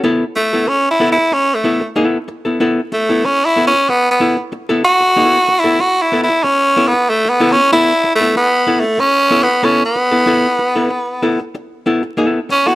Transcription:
<<
  \new Staff \with { instrumentName = "Hollow-body jazz guitar" } { \time 4/4 \key fis \minor \tempo 4 = 94 <b e' a'>16 r8 <b e' a'>16 r8 <b e' a'>16 r8. <b e' a'>16 r16 <b e' a'>16 r8 <b e' a'>16 | <b e' a'>16 r8 <b e' a'>16 r8 <b e' a'>16 r8. <b e' a'>16 r8 <b e' a'>16 r8 | <b e' a'>16 r8 <b e' a'>16 r8 <b e' a'>16 r8. <b e' a'>16 r8. <b e' a'>16 r16 | <b e' a'>16 r8 <b e' a'>16 r8 <b e' a'>16 r8. <b e' a'>16 r16 <b e' a'>16 r8 <b e' a'>16 |
<b e' a'>16 r8 <b e' a'>16 r8 <b e' a'>16 r8. <b e' a'>16 r16 <b e' a'>16 r8 <b e' a'>16 | }
  \new Staff \with { instrumentName = "Tenor saxophone" } { \time 4/4 \key fis \minor r8 a8 \tuplet 3/2 { cis'8 e'8 e'8 cis'8 a8. r16 } r4 | r8 a8 \tuplet 3/2 { cis'8 e'8 cis'8 b8 b8. r16 } r8 fis'8~ | \tuplet 3/2 { fis'4 e'8 fis'8 e'8 e'8 cis'4 b8 a8 b8 cis'8 } | \tuplet 3/2 { e'4 a8 b4 a8 cis'4 b8 cis'8 b4~ } |
b4.~ b16 r4. r16 cis'16 fis'16 | }
>>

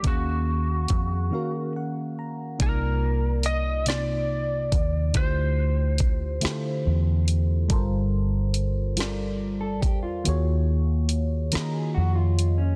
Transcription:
<<
  \new Staff \with { instrumentName = "Lead electric guitar" } { \time 6/8 \key c \dorian \tempo 4. = 47 ges'2 r4 | bes'4 ees''8 d''4. | c''2~ c''8 r8 | r2. |
r2. | }
  \new Staff \with { instrumentName = "Clean electric guitar" } { \time 6/8 \key c \dorian r2. | r2. | r2. | r2 r16 a'16 g'16 f'16~ |
f'16 r4 r16 bes'16 aes'16 ges'16 f'8 des'16 | }
  \new Staff \with { instrumentName = "FM electric piano" } { \time 6/8 \key c \dorian << { r2 ges''8 bes''8 | r2. | r2. | r2. |
r2. | } \\ { <ees bes des' ges' aes' f''>4 r8 <ees bes des' ges' bes' f''>4 r8 | <c bes ees' f' d''>4 r8 <c bes ees' f'>4 r8 | <d a e' f' g' c''>4 r8 <d a e' f' g' a' c''>4 r8 | <g f' a' bes' c''>4 r8 <g f' a' bes' d''>4 r8 |
<ees bes f' ges' aes' des''>4 r8 <ees bes f' ges' aes' ees''>4 r8 | } >> }
  \new Staff \with { instrumentName = "Fingered electric bass" } { \clef bass \time 6/8 \key c \dorian ees,4 f,8 r4. | c,2~ c,8 ees,8 | d,4. r8 e,4 | g,,2~ g,,8 e,8 |
ees,4. r8 f,4 | }
  \new DrumStaff \with { instrumentName = "Drums" } \drummode { \time 6/8 <hh bd>4 <hh bd>8 r4. | <hh bd>4 hh8 <hh sn>4 <hh bd>8 | <hh bd>4 <hh bd>8 <hh sn>4 hh8 | <hh bd>4 hh8 <hh sn>4 <hh bd>8 |
hh4 hh8 <hh sn>4 hh8 | }
>>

